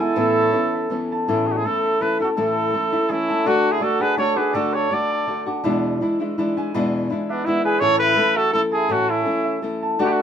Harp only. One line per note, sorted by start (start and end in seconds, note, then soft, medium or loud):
0.00 2.41 E4 medium
0.00 1.32 B4 medium
0.00 0.74 E5 medium
0.00 0.16 F#5 medium
0.00 0.23 G#5 medium
0.00 0.27 B5 medium
0.17 0.54 A4 medium
0.37 2.29 C#5 medium
0.54 0.91 A4 medium
0.74 1.84 E5 medium
0.92 1.28 A4 medium
1.12 2.20 A5 medium
1.29 1.65 A4 medium
1.66 2.01 A4 medium
1.84 2.92 E5 medium
2.02 2.37 A4 medium
2.20 3.28 A5 medium
2.38 2.74 A4 medium
2.74 3.09 A4 medium
2.92 4.65 E5 medium
3.09 5.29 A4 medium
3.28 4.00 A5 medium
3.46 3.80 D5 loud
3.80 4.17 D5 medium
4.00 5.10 A5 medium
4.18 4.53 D5 medium
4.36 5.47 D6 medium
4.53 4.90 D5 medium
4.91 5.27 D5 medium
5.11 6.55 A5 medium
5.27 7.12 D5 medium
5.47 6.69 D6 medium
5.64 6.02 E4 medium
6.02 6.38 E4 medium
6.21 7.29 E5 medium
6.38 6.74 E4 medium
6.57 7.65 G#5 medium
6.74 7.10 E4 medium
7.10 7.46 E4 medium
7.29 8.35 E5 medium
7.47 10.08 E4 medium
7.65 7.88 G#5 medium
7.82 8.16 A4 medium
8.16 8.52 A4 medium
8.35 9.44 E5 medium
8.52 8.88 A4 medium
8.71 9.82 A5 medium
8.88 9.23 A4 medium
9.24 9.62 A4 medium
9.44 10.22 E5 medium
9.62 10.22 A4 medium
9.83 10.22 A5 medium
9.99 10.22 D5 medium